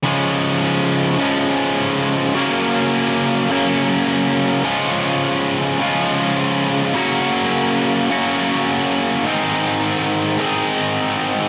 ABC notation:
X:1
M:4/4
L:1/8
Q:1/4=104
K:Db
V:1 name="Distorted electric guitar" clef=bass
[D,F,A,D]4 [D,F,A,D]4 | [D,G,B,D]4 [D,G,B,D]4 | [D,F,A,DF]4 [D,F,A,DF]4 | [D,G,B,DG]4 [D,G,B,DG]4 |
[A,,E,A,CEA]4 [A,,E,A,CEA]4 |]